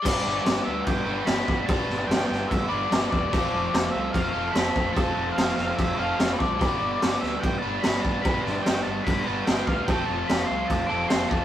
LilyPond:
<<
  \new Staff \with { instrumentName = "Lead electric guitar" } { \time 4/4 \key g \mixolydian \tempo 4 = 147 d''4. e''8 g''4 b''4 | a''4 g''8 g''8 e''8 d''4 d''8~ | d''4. e''8 f''4 b''4 | a''4 f''8 f''8 e''8 f''8~ \tuplet 3/2 { f''8 b'16 d''8.~ } |
d''4. e''8 g''8 a''8 b''8 a''8 | b''8 a''8 g''8 a''8 b''8 a''8 g''8 f''8 | g''8 a''8 b''8 c'''8 a''8 d'''8 c'''8 a''8 | }
  \new Staff \with { instrumentName = "Overdriven electric guitar" } { \time 4/4 \key g \mixolydian <g b d' b'>2~ <g b d' b'>8 <g b d' b'>8 <g b d' b'>4 | <g b d' b'>2~ <g b d' b'>8 <g b d' b'>8 <g b d' b'>4 | <f a c' f' a'>2~ <f a c' f' a'>8 <f a c' f' a'>8 <f a c' f' a'>4 | <f a c' f' a'>2~ <f a c' f' a'>8 <f a c' f' a'>8 <f a c' f' a'>4 |
<g b d' b'>2~ <g b d' b'>8 <g b d' b'>8 <g b d' b'>4 | <g b d' b'>2~ <g b d' b'>8 <g b d' b'>8 <g b d' b'>4 | <f a c' f' a'>2~ <f a c' f' a'>8 <f a c' f' a'>8 <f a c' f' a'>4 | }
  \new Staff \with { instrumentName = "Fingered electric bass" } { \clef bass \time 4/4 \key g \mixolydian g,,8 g,,8 g,,8 d,8 g,,8 g,,8 g,,8 g,,8 | g,,8 g,,8 g,,8 g,,8 g,,8 g,,8 g,,8 e,,8 | f,,8 f,,8 f,,8 c,8 f,,8 f,,8 f,,8 f,,8 | f,,8 f,,8 f,,8 f,,8 f,,8 f,,8 f,,8 c,8 |
g,,8 g,,8 g,,8 d,8 g,,8 g,,8 g,,8 g,,8 | g,,8 g,,8 g,,8 g,,8 g,,8 g,,8 g,,8 d,8 | f,,8 f,,8 f,,8 c,8 f,,8 f,,8 f,,8 f,,8 | }
  \new DrumStaff \with { instrumentName = "Drums" } \drummode { \time 4/4 <cymc bd>4 <cymc sn>4 <cymc bd>4 <cymc sn>8 bd8 | <cymc bd>8 sn8 <cymc sn>8 sn8 <cymc bd>4 <cymc sn>8 bd8 | <cymc bd>4 <cymc sn>4 <cymc bd>4 <cymc sn>8 bd8 | <cymc bd>4 <cymc sn>8 sn8 <cymc bd>4 <cymc sn>8 bd8 |
<cymc bd>4 <cymc sn>8 sn8 <cymc bd>4 <cymc sn>8 bd8 | <cymc bd>8 sn8 <cymc sn>4 <cymc bd>4 <cymc sn>8 bd8 | <cymc bd>4 <cymc sn>4 <cymc bd>4 <cymc sn>8 bd8 | }
>>